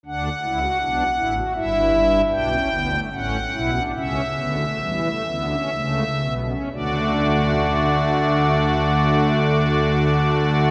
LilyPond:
<<
  \new Staff \with { instrumentName = "Pipe organ" } { \time 4/4 \key d \major \tempo 4 = 67 << { fis''2 e''4 g''4 | fis''4 e''2. | <a d' d''>1 | } \\ { d'8 e'16 fis'16 d'8 e'16 fis'16 e'4 d'16 cis'16 b16 a16 | cis'8 e'16 d'16 cis'8 b16 a16 g16 a16 b16 cis'16 a8 b16 cis'16 | fis'1 | } >> }
  \new Staff \with { instrumentName = "Pipe organ" } { \clef bass \time 4/4 \key d \major <d, d>8 <cis, cis>8 <b,, b,>8 <a,, a,>8 <g,, g,>4 <b,, b,>8 <d, d>8 | <a,, a,>8 <b,, b,>8 <cis, cis>8 <d, d>8 <e, e>8 <d, d>8 <cis, cis>8 <b,, b,>8 | <d, d>1 | }
>>